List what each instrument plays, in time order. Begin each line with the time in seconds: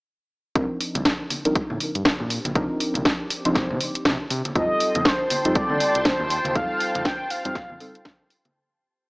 0.55 analog synth bass C2, synth stab F3 C4 D4 D#4 A#4, ambient pad C4, kick, closed hi-hat
0.81 open hi-hat
0.95 analog synth bass C2, closed hi-hat, high conga
1.05 kick, snare, closed hi-hat
1.24 ambient pad G4
1.30 open hi-hat, high conga
1.45 analog synth bass C2, synth stab F3 C4 D4 D#4 A#4, closed hi-hat
1.55 kick, closed hi-hat
1.70 analog synth bass A2, high conga
1.80 open hi-hat
1.95 analog synth bass G2, ambient pad D6, closed hi-hat
2.05 kick, snare, closed hi-hat, high conga
2.20 analog synth bass A#2, low conga
2.30 open hi-hat
2.45 analog synth bass A#1, closed hi-hat, high conga
2.55 analog synth bass C2, synth stab F3 C4 D4 D#4 A#4, kick, closed hi-hat
2.80 open hi-hat
2.94 analog synth bass C2, closed hi-hat, high conga
3.05 kick, snare, closed hi-hat
3.30 open hi-hat
3.45 analog synth bass C2, synth stab F3 C4 D4 D#4 C5, closed hi-hat, low conga
3.55 kick, snare, closed hi-hat, low conga
3.70 analog synth bass C3, high conga
3.81 open hi-hat
3.95 closed hi-hat
4.05 analog synth bass C3, kick, snare, closed hi-hat, high conga, low conga
4.30 analog synth bass C3, open hi-hat
4.45 closed hi-hat, high conga
4.55 analog synth bass F2, synth stab G3 C4 D#4 F4 A4, ambient pad F4, soft synth lead D#5, string machine G5 A5 C6, kick, closed hi-hat
4.80 open hi-hat
4.95 analog synth bass F2, closed hi-hat, high conga
5.05 soft synth lead C5, kick, snare, closed hi-hat
5.30 open hi-hat, high conga
5.43 analog synth bass F2, synth stab G3 C4 D#4 F4 A4, ambient pad G5, closed hi-hat
5.55 ambient pad C5, soft synth lead D5, kick, closed hi-hat
5.70 analog synth bass D3, high conga
5.80 open hi-hat
5.95 analog synth bass C2, closed hi-hat
6.05 soft synth lead C5, kick, snare, closed hi-hat, high conga
6.20 analog synth bass D#2, low conga
6.30 open hi-hat
6.45 analog synth bass D#2, closed hi-hat, high conga
6.55 analog synth bass F2, synth stab G3 C4 D#4 F4 A4, soft synth lead F5, kick, closed hi-hat
6.80 open hi-hat
6.95 analog synth bass F2, closed hi-hat, high conga
7.05 soft synth lead G5, kick, snare, closed hi-hat
7.30 soft synth lead F5, open hi-hat
7.45 analog synth bass F2, synth stab G3 C4 D#4 F4 C5, closed hi-hat, low conga
7.55 analog synth bass F1, kick, snare, closed hi-hat, low conga
7.70 analog synth bass F2, high conga
7.80 synth stab G3 C4 D#4 F4 A4, open hi-hat
7.95 closed hi-hat
8.05 kick, snare, closed hi-hat, high conga, low conga
8.30 open hi-hat
8.45 closed hi-hat, high conga